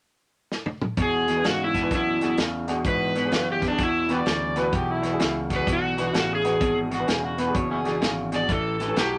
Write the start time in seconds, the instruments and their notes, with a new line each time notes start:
0.52 snare
0.66 high tom
0.82 mid tom
0.97 clean electric guitar E2 B2, fingered electric bass E2, kick, closed hi-hat
1.02 electric slide guitar G#4
1.26 clean electric guitar E2 B2, grand piano F#4 G#4, snare, closed hi-hat
1.35 grand piano D4 F#4 B4
1.44 clean electric guitar E2 C#3, fingered electric bass G#2, snare, closed hi-hat
1.49 electric slide guitar F#4
1.64 electric slide guitar E4
1.73 clean electric guitar E2 B2, grand piano F#4 G#4, kick, snare, closed hi-hat
1.81 grand piano D4 F#4 B4
1.91 clean electric guitar E2 B2, fingered electric bass F#2, kick, snare, closed hi-hat
1.95 electric slide guitar E4
2.20 clean electric guitar E2 B2, grand piano D4 F#4 G#4, snare, closed hi-hat
2.37 clean electric guitar E2 C#3, fingered electric bass E2, snare, closed hi-hat
2.67 clean electric guitar E2 B2, grand piano D4 F#4 G#4, snare, closed hi-hat
2.84 clean electric guitar E2 B2, fingered electric bass G#2, electric slide guitar B4, kick, closed hi-hat
3.14 clean electric guitar E2 B2, grand piano F#4 B4, snare, closed hi-hat
3.23 grand piano D4 F#4 G#4
3.31 clean electric guitar E2 C#3, fingered electric bass F#2, snare, closed hi-hat
3.52 electric slide guitar G4
3.61 clean electric guitar E2 B2, grand piano F#4 B4, kick, snare, closed hi-hat
3.68 electric slide guitar D4, grand piano D4 F#4 G#4
3.78 clean electric guitar E2 B2, fingered electric bass E2, kick, snare, closed hi-hat
3.83 electric slide guitar E4
4.08 clean electric guitar E2 B2, grand piano D4 F#4 B4, snare, closed hi-hat
4.12 harmonica G4 B4 D5
4.26 fingered electric bass D2, clean electric guitar E2 C#3, snare, closed hi-hat
4.56 clean electric guitar E2 B2, grand piano D4 F#4 B4, harmonica B4, snare, closed hi-hat
4.72 fingered electric bass B1, clean electric guitar E2 B2, harmonica G4, kick, closed hi-hat
4.91 harmonica E4
5.02 clean electric guitar E2 B2, grand piano F#4 B4, snare, closed hi-hat
5.11 grand piano D4 F#4 G#4
5.19 fingered electric bass C#2, clean electric guitar E2 C#3, snare, closed hi-hat
5.49 clean electric guitar E2 B2, grand piano F#4 G#4, kick, snare, closed hi-hat
5.56 grand piano D4 F#4 G#4, electric slide guitar B4
5.66 fingered electric bass B1, clean electric guitar E2 B2, kick, closed hi-hat
5.72 electric slide guitar F#4
5.96 clean electric guitar E2 B2, grand piano D4 F#4 B4, snare, closed hi-hat
6.13 fingered electric bass A1, clean electric guitar E2 C#3, snare, closed hi-hat
6.19 electric slide guitar F#4
6.35 electric slide guitar G#4
6.43 clean electric guitar E2 B2, grand piano D4 F#4 B4, snare, closed hi-hat
6.61 fingered electric bass G#1, clean electric guitar E2 B2, kick, closed hi-hat
6.90 clean electric guitar E2 B2, grand piano F#4 G#4, snare, closed hi-hat
6.94 grand piano D4, harmonica F#4
6.99 grand piano F#4 B4
7.07 fingered electric bass E1, clean electric guitar E2 C#3, harmonica G#4, snare, closed hi-hat
7.25 harmonica F#4
7.37 clean electric guitar E2 B2, grand piano F#4 B4, harmonica B4, snare, closed hi-hat
7.46 grand piano D4 F#4 G#4
7.54 fingered electric bass F#1, clean electric guitar E2 B2, harmonica C#5, kick, closed hi-hat
7.71 harmonica C#4 E4 G#4
7.84 clean electric guitar E2 B2, grand piano D4 F#4 G#4, snare, closed hi-hat
8.01 fingered electric bass G#1, clean electric guitar E2 C#3, snare, closed hi-hat
8.32 clean electric guitar E2 B2, grand piano D4 F#4 G#4, snare, closed hi-hat
8.36 electric slide guitar D5
8.49 fingered electric bass A1, clean electric guitar A2 E3, electric slide guitar A4, kick, closed hi-hat
8.79 clean electric guitar A2 E3, grand piano G4 B4, snare, closed hi-hat
8.87 grand piano C#4 G4 B4
8.96 fingered electric bass B1, clean electric guitar A2 F#3, electric slide guitar G4, snare, closed hi-hat